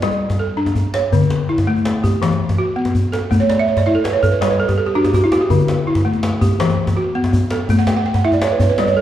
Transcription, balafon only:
Already playing: D5
0.03 G3
0.39 A4
0.57 D4
0.94 C#5
1.13 D3
1.49 E4
1.67 A3
2.04 G4
2.22 E3
2.58 F#4
2.76 B3
3.12 A4
3.31 A3
3.40 C#5
3.49 D5
3.59 E5
3.68 C#5
3.78 D5
3.86 E4 E5
3.95 A4
4.04 B4
4.13 C#5
4.23 A4
4.32 B4
4.41 G3 C#5
4.51 B4
4.60 A4
4.68 G4
4.78 A4
4.86 G4
4.95 D4 F#4
5.05 G4
5.15 F#4
5.24 E4
5.32 F#4
5.41 G4
5.50 D3
5.87 E4
6.05 A3
6.41 G4
6.60 E3
6.97 F#4
7.15 B3
7.51 A4
7.70 A3
7.79 F#5
7.88 G5
7.96 F#5
8.06 G5
8.16 F#5
8.25 E4 E5
8.33 D5
8.43 C#5
8.52 B4
8.61 C#5
8.70 B4
8.79 G3 D5
8.88 C#5
8.97 A4

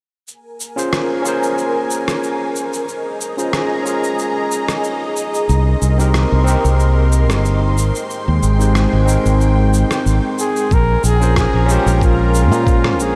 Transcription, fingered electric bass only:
5.49 C2
5.82 C2
6.32 C2
6.65 C2
7.30 G1
7.78 G#1
8.28 D#2
8.43 G#1
8.93 G#1
9.25 G#1
10.06 G#1
10.71 A#1
11.04 A#1
11.54 A#1
11.86 A#1
12.52 A#2
12.99 A#1

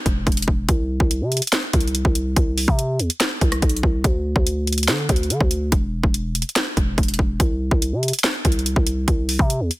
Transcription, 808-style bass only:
0.06 E1
0.27 E1
0.48 E1
0.69 C2
1.00 C2
1.21 C3
1.74 C2
2.05 C2
2.36 C2
2.68 C3
3.00 E2
3.41 C2
3.62 B1
3.83 C2
4.04 D2
4.36 D2
4.88 D3
5.09 D2
5.30 D3
5.41 D2
5.72 E1
6.03 E1
6.77 E1
6.98 E1
7.19 E1
7.40 C2
7.71 C2
7.92 C3
8.45 C2
8.76 C2
9.08 C2
9.39 C3
9.60 E2

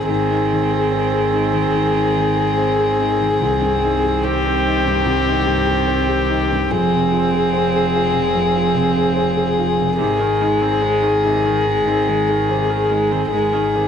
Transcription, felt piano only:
Already playing: G#2 D#3 D#4 G#4 C5
0.08 G#2
0.31 D#4
0.53 D#3
0.73 G#4
0.92 C5
1.13 G#4
1.33 D#4
1.53 D#3
1.74 G#2
1.95 D#4
2.16 D#3
2.36 G#4
2.58 C5
2.78 G#4
2.99 D#4
3.20 D#3
3.41 C2
3.61 G2
3.83 D#4
4.04 G4
4.24 C5
4.45 G4
4.67 D#4
4.86 G2
5.05 C2
5.27 D#4
5.46 G2
5.67 G4
5.88 C5
6.09 G4
6.30 D#4
6.51 G2
6.71 F2
6.93 C3
7.12 F4
7.34 G#4
7.53 C5
7.75 G#4
7.95 F4
8.14 C3
8.35 F2
8.56 F4
8.74 C3
8.96 G#4
9.16 C5
9.37 G#4
9.59 F4
9.79 C3
9.99 G#2
10.21 D#3
10.41 D#4
10.62 G#4
10.82 C5
11.02 G#4
11.24 D#4
11.45 D#3
11.65 G#2
11.87 D#4
12.08 D#3
12.29 G#4
12.51 C5
12.71 G#4
12.91 D#4
13.12 D#3
13.32 G#2
13.55 D#4
13.75 D#3

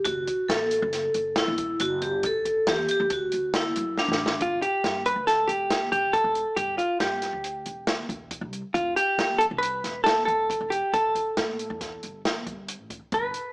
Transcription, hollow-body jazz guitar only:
4.42 F4
4.62 G4
5.06 B4
5.27 A4
5.48 G4
5.92 G4
6.13 A4
6.56 G4
6.78 F4
7.01 G4
8.74 F4
8.96 G4
9.38 A4
9.58 B4
10.04 A4
10.25 A4
10.70 G4
10.94 A4
13.14 B4

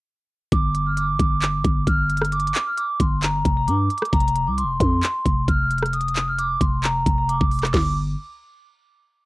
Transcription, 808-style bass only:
0.52 G1
1.19 G1
1.65 G1
1.87 G1
3.00 G1
3.45 F1
3.68 G2
4.13 F1
4.47 C2
4.64 F1
4.80 F2
5.26 F1
5.48 F1
6.61 F1
7.06 F1
7.41 F1
7.74 G1

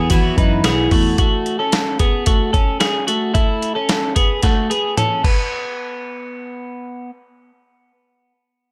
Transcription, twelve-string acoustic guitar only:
Already playing: F#3 B3 E4
0.11 E3 F#3 B3 E4
0.65 E3 F#3 B3 E4

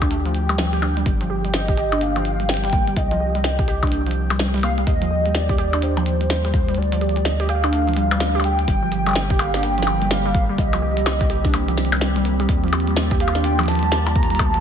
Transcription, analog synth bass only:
Already playing: D2
1.06 G1
2.97 C2
4.87 D#2
6.77 D2
8.68 G1
10.58 C2
12.49 D#2
14.39 D2

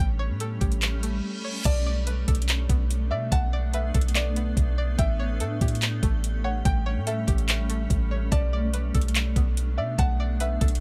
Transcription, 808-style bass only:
0.00 A1
0.30 A2
0.61 A1
1.65 B1
2.28 B1
2.69 B1
3.11 B2
3.32 B1
3.95 B1
4.57 B1
4.99 A1
5.40 A2
5.61 A2
6.03 A1
6.65 A1
6.97 A2
7.28 A1
7.90 A1
8.32 B1
8.95 B1
9.36 B1
9.78 B2
9.99 B1
10.61 B1

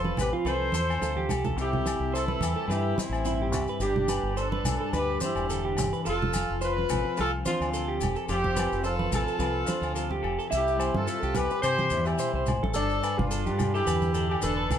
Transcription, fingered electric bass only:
Already playing: F1
0.18 A1
0.45 C2
0.72 E2
1.02 D2
1.29 C2
1.56 C2
2.00 C2
2.40 E2
2.68 G2
3.09 A1
3.52 C2
3.80 G1
4.23 G1
4.63 B1
4.93 D2
5.35 E1
5.78 G1
6.07 F1
6.50 F1
6.90 A1
7.19 C2
7.60 D2
8.01 F1
8.29 F1
8.72 F1
9.11 A1
9.39 C2
9.81 D2
10.23 F1
10.52 C2
10.94 G2
11.23 C2
11.63 C3
11.91 E2
12.33 C2
12.63 A1
12.74 G1
13.18 G1
13.46 G2
13.87 E2
14.42 E1
14.70 C2

